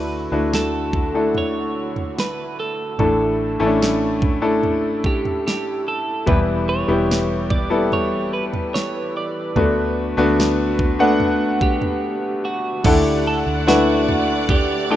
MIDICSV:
0, 0, Header, 1, 7, 480
1, 0, Start_track
1, 0, Key_signature, 2, "major"
1, 0, Tempo, 821918
1, 1743, Time_signature, 4, 2, 24, 8
1, 8737, End_track
2, 0, Start_track
2, 0, Title_t, "Violin section"
2, 0, Program_c, 0, 48
2, 7500, Note_on_c, 0, 74, 94
2, 8737, Note_off_c, 0, 74, 0
2, 8737, End_track
3, 0, Start_track
3, 0, Title_t, "Clean electric guitar"
3, 0, Program_c, 1, 27
3, 0, Note_on_c, 1, 71, 68
3, 318, Note_off_c, 1, 71, 0
3, 321, Note_on_c, 1, 69, 62
3, 802, Note_off_c, 1, 69, 0
3, 804, Note_on_c, 1, 73, 68
3, 1250, Note_off_c, 1, 73, 0
3, 1283, Note_on_c, 1, 71, 69
3, 1514, Note_off_c, 1, 71, 0
3, 1516, Note_on_c, 1, 69, 76
3, 2955, Note_on_c, 1, 67, 71
3, 2993, Note_off_c, 1, 69, 0
3, 3187, Note_off_c, 1, 67, 0
3, 3194, Note_on_c, 1, 67, 74
3, 3412, Note_off_c, 1, 67, 0
3, 3434, Note_on_c, 1, 69, 80
3, 3670, Note_off_c, 1, 69, 0
3, 3672, Note_on_c, 1, 71, 76
3, 3736, Note_off_c, 1, 71, 0
3, 3907, Note_on_c, 1, 73, 88
3, 4380, Note_off_c, 1, 73, 0
3, 4382, Note_on_c, 1, 74, 83
3, 4630, Note_off_c, 1, 74, 0
3, 4632, Note_on_c, 1, 73, 92
3, 4865, Note_off_c, 1, 73, 0
3, 4867, Note_on_c, 1, 71, 79
3, 4931, Note_off_c, 1, 71, 0
3, 5107, Note_on_c, 1, 73, 87
3, 5352, Note_off_c, 1, 73, 0
3, 5354, Note_on_c, 1, 74, 79
3, 6789, Note_on_c, 1, 67, 73
3, 7245, Note_off_c, 1, 74, 0
3, 7270, Note_on_c, 1, 66, 70
3, 7280, Note_off_c, 1, 67, 0
3, 7506, Note_off_c, 1, 66, 0
3, 7508, Note_on_c, 1, 67, 80
3, 7749, Note_off_c, 1, 67, 0
3, 7752, Note_on_c, 1, 69, 84
3, 7815, Note_off_c, 1, 69, 0
3, 7990, Note_on_c, 1, 66, 77
3, 8467, Note_off_c, 1, 66, 0
3, 8470, Note_on_c, 1, 67, 82
3, 8708, Note_off_c, 1, 67, 0
3, 8710, Note_on_c, 1, 69, 92
3, 8737, Note_off_c, 1, 69, 0
3, 8737, End_track
4, 0, Start_track
4, 0, Title_t, "String section"
4, 0, Program_c, 2, 48
4, 0, Note_on_c, 2, 50, 47
4, 0, Note_on_c, 2, 57, 46
4, 0, Note_on_c, 2, 64, 47
4, 0, Note_on_c, 2, 66, 55
4, 1727, Note_off_c, 2, 50, 0
4, 1727, Note_off_c, 2, 66, 0
4, 1742, Note_on_c, 2, 62, 49
4, 3643, Note_off_c, 2, 62, 0
4, 3645, Note_off_c, 2, 57, 0
4, 3663, Note_on_c, 2, 71, 61
4, 3664, Note_on_c, 2, 52, 56
4, 3664, Note_on_c, 2, 67, 53
4, 5561, Note_off_c, 2, 64, 0
4, 5564, Note_off_c, 2, 52, 0
4, 5564, Note_off_c, 2, 67, 0
4, 5583, Note_on_c, 2, 57, 55
4, 5584, Note_on_c, 2, 50, 60
4, 5587, Note_on_c, 2, 62, 56
4, 7480, Note_off_c, 2, 71, 0
4, 7484, Note_off_c, 2, 50, 0
4, 7484, Note_off_c, 2, 57, 0
4, 7486, Note_off_c, 2, 62, 0
4, 7504, Note_on_c, 2, 50, 61
4, 7505, Note_on_c, 2, 64, 60
4, 7505, Note_on_c, 2, 78, 75
4, 7507, Note_on_c, 2, 57, 62
4, 8737, Note_off_c, 2, 50, 0
4, 8737, Note_off_c, 2, 57, 0
4, 8737, Note_off_c, 2, 64, 0
4, 8737, Note_off_c, 2, 78, 0
4, 8737, End_track
5, 0, Start_track
5, 0, Title_t, "Upright piano"
5, 0, Program_c, 3, 0
5, 0, Control_c, 3, 64, 127
5, 0, Note_on_c, 3, 50, 47
5, 0, Note_on_c, 3, 57, 50
5, 0, Note_on_c, 3, 62, 48
5, 0, Note_on_c, 3, 64, 46
5, 0, Note_on_c, 3, 66, 53
5, 165, Note_off_c, 3, 62, 0
5, 166, Note_off_c, 3, 57, 0
5, 166, Note_off_c, 3, 64, 0
5, 168, Note_off_c, 3, 66, 0
5, 186, Note_on_c, 3, 57, 53
5, 187, Note_on_c, 3, 62, 54
5, 188, Note_on_c, 3, 64, 51
5, 188, Note_on_c, 3, 66, 64
5, 521, Note_off_c, 3, 50, 0
5, 640, Note_off_c, 3, 57, 0
5, 641, Note_off_c, 3, 62, 0
5, 641, Note_off_c, 3, 64, 0
5, 642, Note_off_c, 3, 66, 0
5, 666, Note_on_c, 3, 57, 50
5, 669, Note_on_c, 3, 62, 50
5, 671, Note_on_c, 3, 64, 45
5, 672, Note_on_c, 3, 69, 63
5, 1577, Note_off_c, 3, 57, 0
5, 1578, Note_off_c, 3, 62, 0
5, 1579, Note_off_c, 3, 64, 0
5, 1580, Note_off_c, 3, 69, 0
5, 1746, Note_on_c, 3, 57, 53
5, 1747, Note_on_c, 3, 62, 51
5, 1748, Note_on_c, 3, 45, 49
5, 1749, Note_on_c, 3, 64, 47
5, 1750, Note_on_c, 3, 69, 63
5, 1751, Control_c, 3, 64, 0
5, 1842, Control_c, 3, 64, 127
5, 2087, Note_off_c, 3, 57, 0
5, 2087, Note_off_c, 3, 62, 0
5, 2088, Note_off_c, 3, 64, 0
5, 2089, Note_off_c, 3, 69, 0
5, 2100, Note_on_c, 3, 57, 76
5, 2101, Note_on_c, 3, 61, 52
5, 2102, Note_on_c, 3, 64, 64
5, 2102, Note_on_c, 3, 69, 72
5, 2138, Note_on_c, 3, 62, 65
5, 2140, Note_off_c, 3, 61, 0
5, 2442, Note_off_c, 3, 45, 0
5, 2557, Note_off_c, 3, 57, 0
5, 2558, Note_off_c, 3, 64, 0
5, 2559, Note_off_c, 3, 69, 0
5, 2570, Note_off_c, 3, 62, 0
5, 2578, Note_on_c, 3, 57, 63
5, 2579, Note_on_c, 3, 62, 62
5, 2580, Note_on_c, 3, 64, 64
5, 2582, Note_on_c, 3, 69, 69
5, 3492, Note_off_c, 3, 57, 0
5, 3493, Note_off_c, 3, 62, 0
5, 3494, Note_off_c, 3, 64, 0
5, 3494, Note_off_c, 3, 69, 0
5, 3657, Note_on_c, 3, 55, 62
5, 3658, Note_on_c, 3, 59, 59
5, 3659, Note_on_c, 3, 52, 53
5, 3660, Note_on_c, 3, 64, 60
5, 3661, Note_on_c, 3, 67, 63
5, 3671, Control_c, 3, 64, 0
5, 3774, Control_c, 3, 64, 127
5, 4002, Note_off_c, 3, 55, 0
5, 4002, Note_off_c, 3, 59, 0
5, 4003, Note_off_c, 3, 64, 0
5, 4004, Note_off_c, 3, 67, 0
5, 4018, Note_on_c, 3, 55, 64
5, 4018, Note_on_c, 3, 59, 56
5, 4019, Note_on_c, 3, 64, 58
5, 4021, Note_on_c, 3, 67, 68
5, 4358, Note_off_c, 3, 52, 0
5, 4477, Note_off_c, 3, 55, 0
5, 4477, Note_off_c, 3, 59, 0
5, 4477, Note_off_c, 3, 64, 0
5, 4478, Note_off_c, 3, 67, 0
5, 4497, Note_on_c, 3, 55, 62
5, 4497, Note_on_c, 3, 59, 56
5, 4499, Note_on_c, 3, 64, 56
5, 4502, Note_on_c, 3, 69, 71
5, 5412, Note_off_c, 3, 55, 0
5, 5412, Note_off_c, 3, 59, 0
5, 5413, Note_off_c, 3, 64, 0
5, 5414, Note_off_c, 3, 69, 0
5, 5582, Note_on_c, 3, 57, 65
5, 5583, Note_on_c, 3, 59, 59
5, 5584, Note_on_c, 3, 50, 52
5, 5584, Note_on_c, 3, 62, 56
5, 5586, Note_on_c, 3, 66, 71
5, 5591, Control_c, 3, 64, 0
5, 5676, Control_c, 3, 64, 127
5, 5925, Note_off_c, 3, 57, 0
5, 5925, Note_off_c, 3, 59, 0
5, 5926, Note_off_c, 3, 62, 0
5, 5926, Note_off_c, 3, 66, 0
5, 5940, Note_on_c, 3, 57, 77
5, 5943, Note_on_c, 3, 59, 70
5, 5944, Note_on_c, 3, 62, 76
5, 5946, Note_on_c, 3, 66, 86
5, 6280, Note_off_c, 3, 50, 0
5, 6398, Note_off_c, 3, 57, 0
5, 6399, Note_off_c, 3, 59, 0
5, 6399, Note_off_c, 3, 62, 0
5, 6400, Note_off_c, 3, 66, 0
5, 6419, Note_on_c, 3, 57, 74
5, 6421, Note_on_c, 3, 59, 66
5, 6424, Note_on_c, 3, 62, 70
5, 6424, Note_on_c, 3, 78, 85
5, 7333, Note_off_c, 3, 57, 0
5, 7334, Note_off_c, 3, 59, 0
5, 7335, Note_off_c, 3, 62, 0
5, 7336, Note_off_c, 3, 78, 0
5, 7503, Note_on_c, 3, 62, 64
5, 7504, Note_on_c, 3, 57, 65
5, 7505, Note_on_c, 3, 50, 59
5, 7506, Note_on_c, 3, 64, 64
5, 7508, Note_on_c, 3, 78, 63
5, 7509, Note_on_c, 3, 69, 76
5, 7511, Control_c, 3, 64, 0
5, 7598, Control_c, 3, 64, 127
5, 7959, Note_off_c, 3, 57, 0
5, 7959, Note_off_c, 3, 62, 0
5, 7961, Note_off_c, 3, 64, 0
5, 7961, Note_off_c, 3, 78, 0
5, 7962, Note_off_c, 3, 69, 0
5, 7984, Note_on_c, 3, 57, 67
5, 7986, Note_on_c, 3, 62, 64
5, 7986, Note_on_c, 3, 64, 64
5, 7987, Note_on_c, 3, 78, 64
5, 7988, Note_on_c, 3, 71, 77
5, 8201, Note_off_c, 3, 50, 0
5, 8668, Note_off_c, 3, 57, 0
5, 8668, Note_off_c, 3, 62, 0
5, 8669, Note_off_c, 3, 64, 0
5, 8669, Note_off_c, 3, 78, 0
5, 8670, Note_off_c, 3, 71, 0
5, 8704, Note_on_c, 3, 57, 64
5, 8704, Note_on_c, 3, 64, 55
5, 8705, Note_on_c, 3, 62, 57
5, 8707, Note_on_c, 3, 69, 68
5, 8708, Note_on_c, 3, 66, 56
5, 8737, Note_off_c, 3, 57, 0
5, 8737, Note_off_c, 3, 62, 0
5, 8737, Note_off_c, 3, 64, 0
5, 8737, Note_off_c, 3, 66, 0
5, 8737, Note_off_c, 3, 69, 0
5, 8737, End_track
6, 0, Start_track
6, 0, Title_t, "Fingered electric bass"
6, 0, Program_c, 4, 33
6, 0, Note_on_c, 4, 38, 72
6, 161, Note_off_c, 4, 38, 0
6, 186, Note_on_c, 4, 38, 69
6, 1481, Note_off_c, 4, 38, 0
6, 1743, Note_on_c, 4, 33, 83
6, 2080, Note_off_c, 4, 33, 0
6, 2106, Note_on_c, 4, 33, 75
6, 3401, Note_off_c, 4, 33, 0
6, 3665, Note_on_c, 4, 28, 87
6, 4001, Note_off_c, 4, 28, 0
6, 4019, Note_on_c, 4, 28, 93
6, 5318, Note_off_c, 4, 28, 0
6, 5581, Note_on_c, 4, 38, 93
6, 5919, Note_off_c, 4, 38, 0
6, 5943, Note_on_c, 4, 38, 88
6, 7000, Note_off_c, 4, 38, 0
6, 7505, Note_on_c, 4, 38, 91
6, 7841, Note_off_c, 4, 38, 0
6, 7864, Note_on_c, 4, 38, 93
6, 8737, Note_off_c, 4, 38, 0
6, 8737, End_track
7, 0, Start_track
7, 0, Title_t, "Drums"
7, 312, Note_on_c, 9, 38, 83
7, 370, Note_off_c, 9, 38, 0
7, 545, Note_on_c, 9, 36, 68
7, 545, Note_on_c, 9, 43, 50
7, 603, Note_off_c, 9, 36, 0
7, 604, Note_off_c, 9, 43, 0
7, 786, Note_on_c, 9, 43, 52
7, 845, Note_off_c, 9, 43, 0
7, 1147, Note_on_c, 9, 43, 55
7, 1205, Note_off_c, 9, 43, 0
7, 1276, Note_on_c, 9, 38, 89
7, 1335, Note_off_c, 9, 38, 0
7, 1746, Note_on_c, 9, 43, 77
7, 1804, Note_off_c, 9, 43, 0
7, 2233, Note_on_c, 9, 38, 87
7, 2292, Note_off_c, 9, 38, 0
7, 2465, Note_on_c, 9, 36, 69
7, 2468, Note_on_c, 9, 43, 55
7, 2523, Note_off_c, 9, 36, 0
7, 2526, Note_off_c, 9, 43, 0
7, 2707, Note_on_c, 9, 43, 56
7, 2765, Note_off_c, 9, 43, 0
7, 2944, Note_on_c, 9, 36, 72
7, 3003, Note_off_c, 9, 36, 0
7, 3068, Note_on_c, 9, 43, 55
7, 3126, Note_off_c, 9, 43, 0
7, 3198, Note_on_c, 9, 38, 86
7, 3257, Note_off_c, 9, 38, 0
7, 3664, Note_on_c, 9, 36, 86
7, 3666, Note_on_c, 9, 43, 83
7, 3722, Note_off_c, 9, 36, 0
7, 3725, Note_off_c, 9, 43, 0
7, 4154, Note_on_c, 9, 38, 88
7, 4213, Note_off_c, 9, 38, 0
7, 4382, Note_on_c, 9, 36, 70
7, 4384, Note_on_c, 9, 43, 56
7, 4441, Note_off_c, 9, 36, 0
7, 4443, Note_off_c, 9, 43, 0
7, 4626, Note_on_c, 9, 43, 54
7, 4685, Note_off_c, 9, 43, 0
7, 4985, Note_on_c, 9, 43, 63
7, 5043, Note_off_c, 9, 43, 0
7, 5113, Note_on_c, 9, 38, 82
7, 5172, Note_off_c, 9, 38, 0
7, 5583, Note_on_c, 9, 43, 85
7, 5641, Note_off_c, 9, 43, 0
7, 6072, Note_on_c, 9, 38, 83
7, 6131, Note_off_c, 9, 38, 0
7, 6302, Note_on_c, 9, 36, 77
7, 6303, Note_on_c, 9, 43, 52
7, 6360, Note_off_c, 9, 36, 0
7, 6362, Note_off_c, 9, 43, 0
7, 6541, Note_on_c, 9, 43, 57
7, 6600, Note_off_c, 9, 43, 0
7, 6781, Note_on_c, 9, 36, 77
7, 6840, Note_off_c, 9, 36, 0
7, 6901, Note_on_c, 9, 43, 63
7, 6959, Note_off_c, 9, 43, 0
7, 7501, Note_on_c, 9, 43, 105
7, 7501, Note_on_c, 9, 49, 92
7, 7504, Note_on_c, 9, 36, 101
7, 7559, Note_off_c, 9, 43, 0
7, 7559, Note_off_c, 9, 49, 0
7, 7562, Note_off_c, 9, 36, 0
7, 7992, Note_on_c, 9, 38, 104
7, 8050, Note_off_c, 9, 38, 0
7, 8225, Note_on_c, 9, 43, 63
7, 8284, Note_off_c, 9, 43, 0
7, 8462, Note_on_c, 9, 36, 96
7, 8463, Note_on_c, 9, 43, 68
7, 8520, Note_off_c, 9, 36, 0
7, 8521, Note_off_c, 9, 43, 0
7, 8737, End_track
0, 0, End_of_file